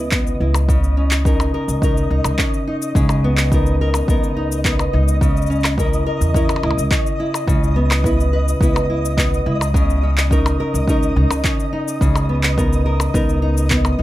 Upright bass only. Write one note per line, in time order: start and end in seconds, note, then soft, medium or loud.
0.00 0.34 C#2 medium
0.40 1.47 C#2 medium
1.68 2.04 C#2 medium
2.10 2.20 C#2 medium
2.25 2.35 C#2 medium
2.95 4.02 C#2 medium
4.08 4.87 C#2 medium
4.94 6.00 C#2 medium
6.21 6.57 E2 medium
6.63 6.73 C#2 medium
6.77 6.87 C#2 medium
7.48 8.55 C#2 medium
8.61 9.39 C#2 medium
9.46 10.53 C#2 medium
10.74 11.10 C#2 medium
11.16 11.26 C#2 medium
12.01 13.08 C#2 medium
13.14 13.93 C#2 medium
13.99 14.03 C#2 medium